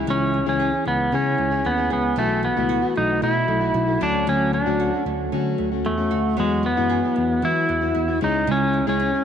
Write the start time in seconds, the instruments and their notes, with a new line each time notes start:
Already playing: steel-string acoustic guitar C#3 E3 C#4 E4 G#4, nylon-string guitar E4 G#4
0.07 tine electric piano C#2, nylon-string guitar E3, electric slide guitar C#4
0.34 nylon-string guitar C#4
0.46 tine electric piano C#2, steel-string acoustic guitar C#3 E3 C#4 E4 G#4, electric slide guitar C#4
0.59 nylon-string guitar G#4
0.72 steel-string acoustic guitar C#4 E4 G#4
0.85 tine electric piano C#2, nylon-string guitar G#3, electric slide guitar B3
1.12 tine electric piano C#3, steel-string acoustic guitar E3 C#4 E4 G#4, nylon-string guitar C#4, electric slide guitar C#4
1.38 tine electric piano C#2, nylon-string guitar G#3
1.51 steel-string acoustic guitar C#4 E4 G#4
1.65 tine electric piano D#2, electric slide guitar B3, nylon-string guitar C#4
1.77 steel-string acoustic guitar C#4 E4 G#4
1.90 tine electric piano C#2, electric slide guitar B3, nylon-string guitar G#4
2.16 tine electric piano B1, nylon-string guitar E3, steel-string acoustic guitar E3 A3 E4 F#4, electric slide guitar A3
2.43 electric slide guitar B3, nylon-string guitar E4
2.57 tine electric piano C#2, steel-string acoustic guitar B2 E3 A3 E4 F#4
2.69 nylon-string guitar F#4
2.82 steel-string acoustic guitar A3 E4 F#4
2.96 tine electric piano B1, nylon-string guitar A3, electric slide guitar D#4
3.21 tine electric piano B2, steel-string acoustic guitar E3 A3 E4 F#4, nylon-string guitar E4, electric slide guitar E4
3.48 tine electric piano B1, nylon-string guitar A3
3.61 steel-string acoustic guitar A3 E4 F#4
3.74 tine electric piano B1, nylon-string guitar E4
3.87 steel-string acoustic guitar A3 E4 F#4
4.00 tine electric piano D2, steel-string acoustic guitar D3 F#3 A3 C#4 F#4, nylon-string guitar F#3, electric slide guitar D4
4.27 tine electric piano D2, nylon-string guitar F#3, electric slide guitar C#4
4.53 nylon-string guitar C#4, electric slide guitar D4
4.66 tine electric piano D2, steel-string acoustic guitar D3 F#3 A3 C#4 F#4
4.80 nylon-string guitar F#4
4.93 steel-string acoustic guitar A3 C#4 F#4
5.05 tine electric piano D2, nylon-string guitar A3
5.32 tine electric piano D3, steel-string acoustic guitar F#3 A3 C#4 F#4, nylon-string guitar C#4
5.58 tine electric piano D2, nylon-string guitar A3
5.72 steel-string acoustic guitar A3 C#4 F#4
5.85 tine electric piano E2, electric slide guitar A3, nylon-string guitar C#4
5.98 steel-string acoustic guitar A3 C#4 F#4
6.11 tine electric piano D2, nylon-string guitar F#4
6.37 tine electric piano E2, nylon-string guitar F#3, steel-string acoustic guitar G#3 B3 E4 F#4, electric slide guitar G#3
6.63 electric slide guitar B3, nylon-string guitar E4
6.77 tine electric piano F#2, steel-string acoustic guitar E3 G#3 B3 E4 F#4
6.89 nylon-string guitar G#4
7.03 steel-string acoustic guitar B3 E4 F#4
7.16 tine electric piano E2, nylon-string guitar B3
7.42 tine electric piano E3, steel-string acoustic guitar G#3 B3 E4 F#4, nylon-string guitar E4, electric slide guitar E4
7.69 tine electric piano E2, nylon-string guitar B3
7.81 steel-string acoustic guitar B3 E4 F#4
7.95 tine electric piano E2, nylon-string guitar E4
8.08 steel-string acoustic guitar B3 E4 F#4
8.21 tine electric piano C#2, steel-string acoustic guitar C#3 G#3 C#4 E4 G#4, nylon-string guitar G#3, electric slide guitar D#4
8.47 tine electric piano C#2, nylon-string guitar G#3
8.51 electric slide guitar C#4
8.74 nylon-string guitar E4
8.87 tine electric piano C#2, steel-string acoustic guitar C#3 G#3 C#4 E4 G#4, electric slide guitar C#4
9.00 nylon-string guitar G#4
9.14 steel-string acoustic guitar C#4 E4 G#4